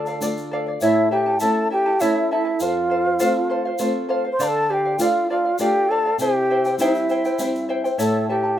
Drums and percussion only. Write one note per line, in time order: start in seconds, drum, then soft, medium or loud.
0.06 shaker soft
0.22 shaker loud
0.37 shaker soft
0.81 shaker medium
1.40 shaker medium
2.00 shaker medium
2.60 shaker medium
3.20 shaker loud
3.78 shaker medium
4.40 shaker medium
4.99 shaker medium
5.59 shaker medium
6.19 shaker medium
6.65 shaker soft
6.79 shaker medium
6.95 shaker soft
7.09 shaker soft
7.25 shaker soft
7.39 shaker loud
7.55 shaker soft
7.85 shaker soft
7.99 shaker loud